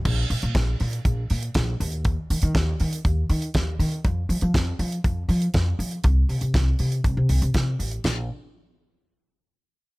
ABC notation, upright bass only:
X:1
M:4/4
L:1/16
Q:1/4=120
K:Eblyd
V:1 name="Upright bass" clef=bass
B,,,2 B,, B,, B,,,2 B,,2 B,,,2 B,,2 B,,,2 E,,2- | E,,2 E, E, E,,2 E,2 E,,2 E,2 E,,2 E,2 | F,,2 F, F, F,,2 F,2 F,,2 F,2 F,,2 F,2 | C,,2 C, C, C,,2 C,2 C,, C, C,, C, C,2 A,,,2 |
B,,,2 z12 z2 |]